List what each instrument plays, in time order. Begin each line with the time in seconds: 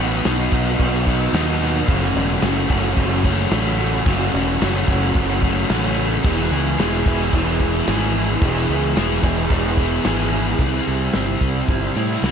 Already playing: fingered electric bass A1, overdriven electric guitar B2 F#3
0.00 overdriven electric guitar F#3 B3 D#4 F#4
0.25 fingered electric bass B1, overdriven electric guitar B2 F#3 B3 D#4 F#4, snare, crash
0.52 fingered electric bass B1, overdriven electric guitar F#3 B3 D#4 F#4, kick, crash
0.79 fingered electric bass B1, kick, crash
1.06 overdriven electric guitar F#3 B3 D#4, kick, crash
1.33 fingered electric bass D#2, overdriven electric guitar B2 F#3 B3 D#4 F#4, snare, crash
1.62 overdriven electric guitar B3 D#4 F#4, snare, crash
1.88 fingered electric bass F#1, overdriven electric guitar F#2 C#3 F#3 A3 C#4 F#4, kick, crash
2.15 fingered electric bass E1, overdriven electric guitar F#3 A3 C#4 F#4, crash
2.42 fingered electric bass F#1, overdriven electric guitar C#3 F#3 A3 C#4 F#4, snare, crash
2.57 snare
2.70 fingered electric bass F#1, overdriven electric guitar F#3 A3 C#4 F#4, kick, crash
2.97 fingered electric bass F#1, kick, crash
3.23 overdriven electric guitar F#3 A3 C#4, kick, crash
3.51 fingered electric bass A1, overdriven electric guitar C#3 F#3 A3 C#4 F#4, snare, crash
3.79 overdriven electric guitar F#3 A3 C#4 F#4, crash
4.06 fingered electric bass F#1, overdriven electric guitar F#2 C#3 F#3 A3 C#4 F#4, kick, crash
4.33 fingered electric bass E1, overdriven electric guitar F#3 A3 C#4 F#4, crash
4.60 fingered electric bass F#1, overdriven electric guitar C#3 F#3 A3 C#4 F#4, snare, crash
4.75 snare
4.88 fingered electric bass F#1, overdriven electric guitar F#3 A3 C#4 F#4, kick, crash
5.15 fingered electric bass F#1, kick, crash
5.42 overdriven electric guitar F#3 A3 C#4, kick, crash
5.69 fingered electric bass A1, overdriven electric guitar C#3 F#3 A3 C#4 F#4, snare, crash
5.97 overdriven electric guitar F#3 A3 C#4 F#4, snare, crash
6.24 fingered electric bass E1, overdriven electric guitar E3 G#3 B3 E4 G#4, kick, crash
6.51 fingered electric bass C#2, overdriven electric guitar G#3 B3 E4 G#4, crash
6.78 fingered electric bass E1, overdriven electric guitar E3 G#3 B3 E4 G#4, snare, crash
7.06 fingered electric bass E1, overdriven electric guitar G#3 B3 E4 G#4, kick, crash
7.33 fingered electric bass E1, kick, crash
7.60 overdriven electric guitar G#3 B3 E4, kick, crash
7.87 fingered electric bass G#1, overdriven electric guitar E3 G#3 B3 E4 G#4, snare, crash
8.15 overdriven electric guitar B3 E4 G#4, crash
8.42 fingered electric bass E1, overdriven electric guitar E3 G#3 B3 E4 G#4, kick, crash
8.69 fingered electric bass C#2, overdriven electric guitar G#3 B3 E4 G#4, crash
8.95 fingered electric bass E1, overdriven electric guitar E3 G#3 B3 E4 G#4, snare, crash
9.23 fingered electric bass E1, overdriven electric guitar G#3 B3 E4 G#4, kick, crash
9.50 fingered electric bass E1, kick, crash
9.77 overdriven electric guitar G#3 B3 E4, kick, crash
10.04 fingered electric bass G#1, overdriven electric guitar E3 G#3 B3 E4 G#4, snare, crash
10.31 overdriven electric guitar B3 E4 G#4, snare, crash
10.58 fingered electric bass C2, overdriven electric guitar C3 G3 C4 E4, kick, open hi-hat
10.87 fingered electric bass C2
11.13 fingered electric bass G1, overdriven electric guitar C3 G3 C4 E4, snare, open hi-hat
11.41 fingered electric bass C2, kick
11.68 fingered electric bass G1, overdriven electric guitar C3 G3 C4 E4, kick, open hi-hat
11.96 fingered electric bass A2, overdriven electric guitar G3 C4 E4
12.23 fingered electric bass C2, overdriven electric guitar C3 G3 C4 E4, snare, open hi-hat